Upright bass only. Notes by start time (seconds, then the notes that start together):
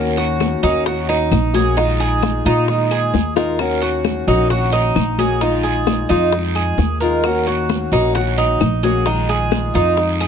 Already playing: D#2
0.63 D#2
1.31 A#1
2.45 A#2
3.14 D#2
4.27 A#1
4.96 A#1
6.10 F2
6.78 D#2
7.92 A#1
8.61 A#1
9.75 F2